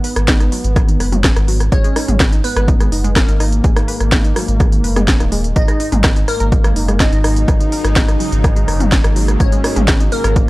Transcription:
Already playing: G#2 B3 B4
0.04 B4 B5, open hi-hat
0.16 G#1, cross-stick, closed hi-hat
0.28 D#4 D#5, kick, snare, closed hi-hat
0.40 D#4 D#5, cross-stick, closed hi-hat
0.52 F#3 F#4, open hi-hat
0.64 G#1, closed hi-hat
0.76 G#4 G#5, kick, cross-stick, closed hi-hat
0.88 D#3 D#4, closed hi-hat
1.00 F#1 B4 B5, cross-stick, open hi-hat
1.12 F#3 F#4, closed hi-hat, mid tom
1.24 kick, snare, closed hi-hat
1.36 G#1, cross-stick, closed hi-hat
1.48 F#3 F#4, open hi-hat
1.60 cross-stick, closed hi-hat
1.72 G#1 G#3 C#4 G#4 C#5, kick, closed hi-hat
1.84 G#3 G#4, closed hi-hat
1.96 D#4 D#5, cross-stick, open hi-hat
2.08 G#1 G#3 G#4, closed hi-hat, mid tom
2.20 B4 B5, kick, cross-stick, snare, closed hi-hat
2.32 D#4 D#5, closed hi-hat
2.44 B3 B4, open hi-hat
2.56 G#1 B4 B5, cross-stick, closed hi-hat
2.68 D#4 D#5, kick, closed hi-hat
2.80 G#3 G#4, cross-stick, closed hi-hat
2.92 F#1 D#4 D#5, open hi-hat
3.04 G#3 G#4, closed hi-hat
3.16 A#3 A#4 B4, kick, cross-stick, snare, closed hi-hat
3.28 G#1 D#4 D#5, closed hi-hat
3.40 D#4 D#5, cross-stick, open hi-hat
3.52 closed hi-hat
3.64 G#1 G#4 G#5, kick, closed hi-hat
3.76 D#3 D#4, cross-stick, closed hi-hat
3.88 B4 B5, open hi-hat
4.00 G#1, cross-stick, closed hi-hat
4.12 D#4 D#5, kick, snare, closed hi-hat
4.24 D#4 D#5, closed hi-hat
4.36 F#3 F#4, cross-stick, open hi-hat
4.48 G#1, closed hi-hat
4.60 G#4 G#5, kick, cross-stick, closed hi-hat
4.72 D#3 D#4, closed hi-hat
4.84 F#1 B4 B5, open hi-hat
4.96 G#3 G#4, cross-stick, closed hi-hat, mid tom
5.08 kick, snare, closed hi-hat
5.20 D#1 D#4 D#5, cross-stick, closed hi-hat
5.32 G#3 G#4, open hi-hat
5.44 closed hi-hat
5.56 G#1 C#3 F#3 G#3 A#3 D#4 G#4 D#5, kick, closed hi-hat
5.68 G#3 G#4, cross-stick, closed hi-hat
5.80 D#4 D#5, open hi-hat
5.92 G#1 G#3 G#4, closed hi-hat, mid tom
6.04 A#4 A#5, kick, cross-stick, snare, closed hi-hat
6.16 D#4 D#5, closed hi-hat
6.28 A#3 A#4, cross-stick, open hi-hat
6.40 G#1 A#4 A#5, closed hi-hat
6.52 D#4 D#5, kick, closed hi-hat
6.64 G#3 G#4, cross-stick, closed hi-hat
6.76 F#1 D#4 D#5, open hi-hat
6.88 G#3 G#4, cross-stick, closed hi-hat
7.00 D#4 A#4 D#5 A#5, kick, snare, closed hi-hat
7.12 G#1 D#4 D#5, closed hi-hat
7.24 D#4 D#5, cross-stick, open hi-hat
7.36 closed hi-hat
7.48 G#1 G#4 G#5, kick, cross-stick, closed hi-hat
7.60 D#3 D#4, closed hi-hat
7.72 A#4 A#5, open hi-hat
7.84 G#1, cross-stick, closed hi-hat
7.96 D#4 D#5, kick, snare, closed hi-hat
8.08 D#4 D#5, cross-stick, closed hi-hat
8.20 F#3 F#4, open hi-hat
8.32 G#1, closed hi-hat
8.44 G#4 G#5, kick, cross-stick, closed hi-hat
8.56 G#3 G#4, closed hi-hat
8.68 F#1 A#4 A#5, cross-stick, open hi-hat
8.80 F#3 F#4, closed hi-hat, mid tom
8.92 kick, snare, closed hi-hat
9.04 G#1, cross-stick, closed hi-hat
9.16 F#3 F#4, open hi-hat
9.28 cross-stick, closed hi-hat
9.40 G#1 G#3 C#4 G#4 C#5, kick, closed hi-hat
9.52 G#3 G#4, closed hi-hat
9.64 D#4 D#5, cross-stick, open hi-hat
9.76 G#1 G#3 G#4, closed hi-hat, mid tom
9.88 A#4 A#5, kick, cross-stick, snare, closed hi-hat
10.00 D#4 D#5, closed hi-hat
10.12 A#3 A#4, open hi-hat
10.24 G#1 A#4 A#5, cross-stick, closed hi-hat
10.36 D#4 D#5, kick, closed hi-hat

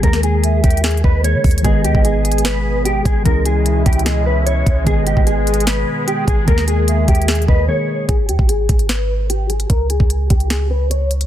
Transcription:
0.01 D#2 D#3 G#3 A#3 G#4 A#4, kick, closed hi-hat
0.06 A#4
0.13 snare
0.23 G#4, closed hi-hat
0.44 E5, closed hi-hat
0.64 D#2 G4, kick, closed hi-hat
0.70 closed hi-hat
0.77 closed hi-hat
0.84 G#4, snare, closed hi-hat
0.91 closed hi-hat
0.97 closed hi-hat
1.04 D#2 B4 D#5, kick
1.23 D#3 G#3 A#3 G#4 A#4 C#5, closed hi-hat
1.34 D#3
1.44 D#2, kick, closed hi-hat, open hi-hat
1.51 closed hi-hat
1.58 D#3, closed hi-hat
1.63 G#1 B2 G#3 B3 G#4 B4 D#5, kick, closed hi-hat
1.85 D#2 G4, closed hi-hat
1.95 G#1, kick
2.05 G#4, closed hi-hat
2.25 G#5, closed hi-hat
2.32 closed hi-hat
2.38 closed hi-hat
2.45 B4, snare, closed hi-hat
2.85 G4, closed hi-hat
3.05 G#1 G#4, kick, closed hi-hat
3.23 C#2 E3 G#3 C#4 E4 A#4, kick, closed hi-hat
3.28 G#4
3.46 G#4, closed hi-hat
3.66 E5, closed hi-hat
3.86 C#2 G4, kick, closed hi-hat
3.93 closed hi-hat
3.99 closed hi-hat
4.06 G#4 D#5, snare, closed hi-hat
4.26 B4 E5
4.46 C#5, closed hi-hat
4.66 C#2, kick, closed hi-hat
4.84 G#1 D#3 G#3 B3 G#4 D#5, kick, closed hi-hat
4.89 B4
5.07 G4, closed hi-hat
5.17 G#1, kick
5.27 G#4, closed hi-hat
5.47 G#5, closed hi-hat
5.54 closed hi-hat
5.60 closed hi-hat
5.67 B4, snare, closed hi-hat
6.07 G4, closed hi-hat
6.28 G#1 G#4, kick, closed hi-hat
6.45 D#2 D#3 G#3 A#3 G#4 A#4, kick, closed hi-hat
6.50 A#4
6.58 snare
6.68 G#4, closed hi-hat
6.88 E5, closed hi-hat
7.08 D#2 G4, kick, closed hi-hat
7.15 closed hi-hat
7.22 closed hi-hat
7.28 G#4, snare, closed hi-hat
7.35 closed hi-hat
7.42 closed hi-hat
7.48 D#2 B4 D#5, kick
7.67 D#3 G#3 A#3 G#4 A#4 C#5
8.09 G#1 G#4, kick, closed hi-hat
8.29 D#2 G4, closed hi-hat
8.39 G#1, kick
8.49 G#4, closed hi-hat
8.69 G#1, kick, closed hi-hat
8.79 closed hi-hat
8.89 B4, snare, closed hi-hat
9.30 G4, closed hi-hat
9.50 G#4, closed hi-hat
9.60 closed hi-hat
9.70 C#2 A#4, kick, closed hi-hat
9.90 G#4, closed hi-hat
10.00 C#2, kick
10.10 closed hi-hat
10.30 C#2 G4, kick, closed hi-hat
10.40 closed hi-hat
10.50 G#4, snare, closed hi-hat
10.71 B4
10.91 C#5, closed hi-hat
11.11 closed hi-hat
11.21 closed hi-hat

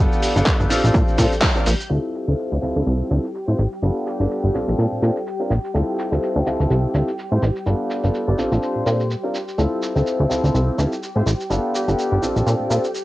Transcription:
Already playing: B3 D4 G4 G5
0.00 F4 A4
0.12 shaker
0.23 open hi-hat, shaker
0.35 G1 B3 D4 F4 A4, shaker
0.46 kick, clap, shaker
0.60 G1, shaker
0.70 C4 D4 F4 A4, open hi-hat, shaker
0.84 A#1, shaker
0.94 A#2, kick, shaker
1.08 A#2, shaker
1.18 A#2 C4 D4 F4 A4, kick, open hi-hat, shaker
1.32 shaker
1.42 kick, clap, shaker
1.55 C4 D4 F4 A#4, shaker
1.66 A#1, open hi-hat, shaker
1.80 shaker
1.90 D2 C4 E4 F4 G4 A4 G5, shaker
2.15 shaker
2.27 D2 C4 E4 F4 A4, shaker
2.39 shaker
2.52 D2
2.62 D2 C4 E4 F4 A4, shaker
2.76 D2, shaker
2.87 C2, shaker
3.10 D2 C4 E4 F4 A4, shaker
3.24 shaker
3.35 shaker
3.47 A2 C4 E4 F4 C5
3.58 A1, shaker
3.72 shaker
3.82 G1 B3 D4 F4 A4, shaker
4.07 G4, shaker
4.19 G1 B3 D4 F4 A4, shaker
4.31 shaker
4.44 G1
4.54 A#1 C4 D4 F4 A4, shaker
4.68 A#1, shaker
4.78 A#2, shaker
4.92 A#2
5.02 A#2 C4 D4 F4 A4, shaker
5.16 shaker
5.27 shaker
5.39 C4 D4 F4 A#4
5.50 A#1, shaker
5.64 shaker
5.74 D2 C4 E4 F4 A4, shaker
5.99 shaker
6.11 D2 C4 E4 F4 A4, shaker
6.23 shaker
6.36 D2
6.46 C4 E4 F4 A4, shaker
6.60 D2, shaker
6.70 C2, shaker
6.94 D2 C4 E4 F4 A4, shaker
7.08 shaker
7.19 shaker
7.31 A2 C4 E4 F4 C5
7.42 A1, shaker
7.56 shaker
7.66 G1 B3 D4 F4 A4, shaker
7.90 shaker
8.03 G1 B3 D4 F4 A4, shaker
8.15 shaker
8.28 G1 D5
8.38 C4 D4 F4 A4, shaker
8.52 A#1, shaker
8.62 C5, shaker
8.76 A#2
8.86 A#2 C4 D4 F4 A4, shaker
9.00 shaker
9.11 shaker
9.23 C4 D4 F4 A#4
9.35 shaker
9.48 shaker
9.58 D2 C4 E4 F4 G4 A4 G5, shaker
9.82 shaker
9.95 D2 C4 E4 F4 A4, shaker
10.07 shaker
10.20 D2
10.30 D2 C4 E4 F4 A4, shaker
10.44 D2, shaker
10.54 C2, shaker
10.78 D2 C4 E4 F4 A4, shaker
10.92 shaker
11.03 shaker
11.16 A2 C4 E4 F4 C5
11.26 A1, shaker
11.40 shaker
11.50 G1 B3 D4 F4 A4, shaker
11.75 G4, shaker
11.87 G1 B3 D4 F4 A4, shaker
11.99 shaker
12.12 G1
12.22 A#1 C4 D4 F4 A4, shaker
12.36 A#1, shaker
12.46 A#2, shaker
12.60 A#2
12.70 A#2 C4 D4 F4 A4, shaker
12.84 shaker
12.95 shaker

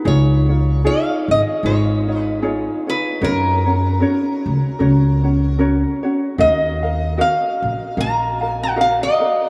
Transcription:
0.05 C#2 D#4 F4 G#4 C#5
0.49 D#4 F4 C#5
0.84 D#4 F4 G#4 C#5 F5
1.28 G#1 D#5
1.63 G#1 D#4 F4 G#4 C#5
2.08 D#4 F4 C#5
2.20 B4
2.42 D#4 F4 G#4 C#5
2.87 D#4 F4 B4 C#5
3.21 F#2 C#4 F#4 A#4 C#5
3.66 C#4 F#4 C#5
4.00 C#4 F#4 A#4 C#5
4.46 C#2
4.79 C#2 C#4 F#4 A#4 C#5
5.24 C#4 F#4 C#5
5.59 C#4 F#4 A#4 C#5
6.03 C#4 F#4 C#5
6.38 D#2 F#4 A#4 D#5 F5
6.83 F#4 A#4 F5
7.17 F#4 A#4 D#5 F5
7.62 A#1
7.96 A#1 F#4 A#4 D#5 F5
8.01 A#5
8.41 F#4 A#4 F5
8.49 G#5
8.63 F#5
8.76 F#4 A#4 D#5 F5
8.81 F5
9.03 D#5
9.20 F#4 A#4 F5

